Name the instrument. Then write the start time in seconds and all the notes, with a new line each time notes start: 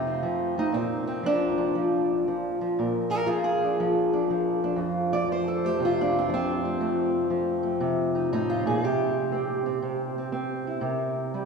steel-string acoustic guitar
Already playing: F2 C3 A3 F4
0.07 C4
0.23 F3
0.58 A3 D#4
0.72 A#2 C4
1.07 C4
1.23 F3 D4
1.58 F3
1.75 F3
2.28 F3
2.61 F3
2.79 A#2 A#4
3.10 F4 A#4
3.26 F3 F4 G#4
3.44 G#4
3.64 D4
3.80 F3
4.13 D4
4.30 F3
4.64 D4
4.76 F2 F4
5.13 D5
5.28 F3 C5
5.48 A4
5.65 A3 G4
5.80 C3
5.85 F4
6.01 D4
6.19 C4
6.29 F3
6.34 C4
6.65 A3
6.80 F2 A3
7.30 F3
7.63 A3
7.80 C3
8.15 D#4
8.33 A2 D#4
8.50 F4
8.66 A#2 G#4
8.84 C3 G4
9.32 C4
9.66 C4
9.82 C3
10.18 C4
10.32 C4
10.67 E4
10.81 C3 A#4
11.34 G3